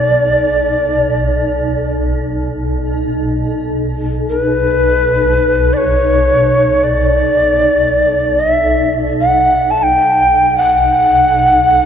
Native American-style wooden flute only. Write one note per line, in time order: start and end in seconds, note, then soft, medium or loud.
0.00 1.90 D5 medium
4.29 5.75 B4 medium
5.73 6.85 C#5 medium
5.73 5.78 D5 medium
6.83 8.41 D5 medium
8.40 8.51 D#5 medium
8.51 8.95 E5 medium
9.21 9.72 F#5 medium
9.71 9.78 A5 medium
9.78 9.84 A5 medium
9.83 10.57 G5 medium
10.57 11.86 F#5 medium